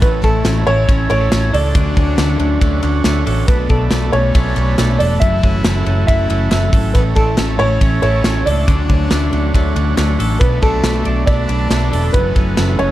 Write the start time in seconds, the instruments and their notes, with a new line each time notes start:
Already playing: clean electric guitar A3 C#4
0.00 fingered electric bass A1, overdriven electric guitar A2 E3 A3 C#4 E4, trumpet B3, transistor combo organ C#4 E4 A4, upright piano B4, kick, hi-hat pedal, ride
0.21 fingered electric bass A1, trumpet A3, transistor combo organ C#4 E4 A4, overdriven electric guitar C#4 E4, upright piano A4, kick, ride
0.25 overdriven electric guitar A3
0.45 fingered electric bass A1, overdriven electric guitar A2 E3 A3 C#4 E4, transistor combo organ C#4 E4 A4, snare, clap, ride
0.65 fingered electric bass A1, overdriven electric guitar A3 C#4 E4, trumpet C#4, transistor combo organ C#4 E4 A4, upright piano C#5, ride
0.88 fingered electric bass A1, overdriven electric guitar E3 A3 C#4 E4, transistor combo organ C#4 E4 A4, kick, ride
1.09 fingered electric bass A1, overdriven electric guitar A3 C#4 E4, trumpet C#4, transistor combo organ C#4 E4 A4, clean electric guitar D4, upright piano C#5, clap, ride
1.21 clean electric guitar E4
1.31 fingered electric bass A1, overdriven electric guitar A2 E3 A3 C#4 E4, transistor combo organ C#4 E4 A4, snare, clap, ride
1.52 fingered electric bass C#2, overdriven electric guitar A3 C#4 E4, transistor combo organ C#4 E4 A4, trumpet D4, clean electric guitar A4, upright piano D5, open hi-hat, ride
1.74 fingered electric bass D2, overdriven electric guitar D3 F#3 A3 C#4, transistor combo organ D4 F#4 C#5, kick, hi-hat pedal, ride
1.96 fingered electric bass D2, overdriven electric guitar F#3 A3 C#4, transistor combo organ D4 F#4 C#5, kick, ride
2.18 fingered electric bass D2, overdriven electric guitar D3 F#3 A3 C#4, transistor combo organ D4 F#4 C#5, snare, clap, ride
2.39 fingered electric bass D2, overdriven electric guitar F#3 A3 C#4, transistor combo organ D4 F#4 C#5, ride
2.61 fingered electric bass D2, overdriven electric guitar D3 F#3 A3 C#4, transistor combo organ D4 F#4 C#5, kick, ride
2.82 fingered electric bass D2, overdriven electric guitar F#3 A3 C#4, transistor combo organ D4 F#4 C#5, clap, ride
3.04 fingered electric bass D2, overdriven electric guitar D3 F#3 A3 C#4, transistor combo organ D4 F#4 C#5, snare, clap, ride
3.25 fingered electric bass A1, overdriven electric guitar F#3 A3 C#4, transistor combo organ D4 F#4 C#5, clean electric guitar A4, open hi-hat, ride
3.47 fingered electric bass B1, overdriven electric guitar B2 F#3 A3 D4, trumpet B3, transistor combo organ D4 A4 B4, upright piano B4, kick, hi-hat pedal, ride
3.69 fingered electric bass B1, overdriven electric guitar F#3 A3 D4, trumpet A3, transistor combo organ D4 A4 B4, upright piano A4, kick, ride
3.91 fingered electric bass B1, overdriven electric guitar B2 F#3 A3 D4, transistor combo organ D4 A4 B4, snare, clap, ride
4.12 fingered electric bass B1, overdriven electric guitar F#3 A3 D4, trumpet C#4, transistor combo organ D4 A4 B4, upright piano C#5, ride
4.35 fingered electric bass B1, overdriven electric guitar B2 F#3 A3 D4, transistor combo organ D4 A4 B4, kick, ride
4.56 fingered electric bass B1, overdriven electric guitar F#3 A3 D4, transistor combo organ D4 A4 B4, clap, ride
4.78 fingered electric bass B1, overdriven electric guitar B2 F#3 A3 D4, transistor combo organ D4 A4 B4, snare, clap, ride
4.98 fingered electric bass E1, overdriven electric guitar A3 D4, trumpet D4, transistor combo organ D4 A4 B4, clean electric guitar A4, upright piano D5, open hi-hat, ride
5.03 overdriven electric guitar F#3
5.20 fingered electric bass F#1, overdriven electric guitar F#2 C#3 E3 A3 E4, trumpet E4, transistor combo organ E4 F#4 A4, upright piano E5, kick, hi-hat pedal, ride
5.43 fingered electric bass F#1, overdriven electric guitar E3 A3 E4, clean electric guitar C#4, transistor combo organ E4 F#4 A4, kick, ride
5.64 fingered electric bass F#1, overdriven electric guitar F#2 C#3 E3 A3 E4, transistor combo organ E4 F#4 A4, snare, clap, ride
5.86 fingered electric bass F#1, overdriven electric guitar E3 A3 E4, clean electric guitar C#4, transistor combo organ E4 F#4 A4, ride
6.07 overdriven electric guitar C#3 E3 A3, trumpet E4, transistor combo organ E4 F#4 A4, upright piano E5, kick, ride
6.11 overdriven electric guitar E4
6.29 fingered electric bass F#1, overdriven electric guitar E3 A3 E4, clean electric guitar C#4, transistor combo organ E4 F#4 A4, clap, ride
6.51 fingered electric bass F#1, overdriven electric guitar F#2 C#3 E3 A3 E4, transistor combo organ E4 F#4 A4, snare, clap, ride
6.72 fingered electric bass G#1, overdriven electric guitar E3 A3 E4, transistor combo organ E4 F#4 A4, clean electric guitar A4, kick, open hi-hat, ride
6.94 fingered electric bass A1, overdriven electric guitar A2 E3 A3 C#4 E4, trumpet B3, transistor combo organ E4 A4 C#5, upright piano B4, kick, hi-hat pedal, ride
7.15 fingered electric bass A1, trumpet A3, overdriven electric guitar A3 C#4 E4, clean electric guitar D4, transistor combo organ E4 A4 E5, upright piano A4, kick, ride
7.27 clean electric guitar E4
7.38 fingered electric bass A1, overdriven electric guitar A2 E3 A3 C#4 E4, transistor combo organ E4 A4 C#5, snare, clap, ride
7.58 fingered electric bass A1, overdriven electric guitar A3 C#4 E4, trumpet C#4, transistor combo organ E4 A4 C#5, upright piano C#5, ride
7.81 fingered electric bass A1, overdriven electric guitar E3 A3 C#4 E4, transistor combo organ E4 A4 C#5, kick, ride
8.01 fingered electric bass A1, overdriven electric guitar A3 C#4 E4, trumpet C#4, transistor combo organ E4 A4 C#5, upright piano C#5, clap, ride
8.23 fingered electric bass A1, overdriven electric guitar A2 E3 A3 C#4 E4, transistor combo organ E4 A4 C#5, snare, clap, ride
8.45 fingered electric bass C#2, overdriven electric guitar A3 C#4 E4, trumpet D4, transistor combo organ E4 A4 C#5, clean electric guitar A4, upright piano D5, open hi-hat, ride
8.66 fingered electric bass D2, overdriven electric guitar D3 F#3 A3 C#4, transistor combo organ D4 F#4 C#5, kick, hi-hat pedal, ride
8.88 fingered electric bass D2, overdriven electric guitar F#3 A3 C#4, transistor combo organ D4 F#4 C#5, kick, ride
9.10 fingered electric bass D2, overdriven electric guitar D3 F#3 A3 C#4, transistor combo organ D4 F#4 C#5, snare, clap, ride
9.31 fingered electric bass D2, overdriven electric guitar F#3 A3 C#4, transistor combo organ D4 F#4 C#5, ride
9.53 fingered electric bass D2, overdriven electric guitar D3 F#3 A3 C#4, transistor combo organ D4 F#4 C#5, kick, ride
9.74 fingered electric bass D2, overdriven electric guitar F#3 A3 C#4, transistor combo organ D4 F#4 C#5, clap, ride
9.96 fingered electric bass D2, overdriven electric guitar D3 F#3 A3 C#4, transistor combo organ D4 F#4 C#5, snare, clap, ride
10.18 fingered electric bass A1, overdriven electric guitar F#3 A3 C#4, transistor combo organ D4 F#4 C#5, clean electric guitar A4, open hi-hat, ride
10.39 fingered electric bass B1, overdriven electric guitar B2 F#3 A3 D4, trumpet B3, transistor combo organ D4 A4 B4, upright piano B4, kick, hi-hat pedal, ride
10.61 fingered electric bass B1, overdriven electric guitar F#3 A3 D4, trumpet A3, transistor combo organ D4 A4 B4, upright piano A4, kick, ride
10.82 fingered electric bass B1, overdriven electric guitar B2 F#3 A3 D4, transistor combo organ D4 A4 B4, snare, clap, ride
11.04 fingered electric bass B1, overdriven electric guitar F#3 A3 D4, transistor combo organ D4 A4 D5, ride
11.26 fingered electric bass B1, overdriven electric guitar B2 F#3 A3 D4, transistor combo organ D4 A4 B4, trumpet D4, upright piano D5, kick, ride
11.46 fingered electric bass B1, overdriven electric guitar A3 D4, transistor combo organ D4 A4 B4, clap, ride
11.51 overdriven electric guitar F#3
11.69 fingered electric bass B1, overdriven electric guitar B2 F#3 A3 D4, transistor combo organ D4 A4 B4, snare, clap, ride
11.91 fingered electric bass E1, overdriven electric guitar F#3 A3 D4, transistor combo organ D4 A4 B4, clean electric guitar A4, open hi-hat, ride
12.12 fingered electric bass F#1, overdriven electric guitar F#2 C#3 E3 A3 C#4, trumpet B3, transistor combo organ E4 F#4 A4, upright piano B4, kick, hi-hat pedal, ride
12.35 fingered electric bass F#1, overdriven electric guitar E3 A3 C#4, transistor combo organ E4 F#4 A4, kick, ride
12.56 fingered electric bass F#1, overdriven electric guitar F#2 C#3 E3 A3 C#4, transistor combo organ E4 F#4 A4, snare, clap, ride
12.78 fingered electric bass F#1, overdriven electric guitar E3 A3 C#4, trumpet C#4, transistor combo organ E4 F#4 A4, upright piano C#5, ride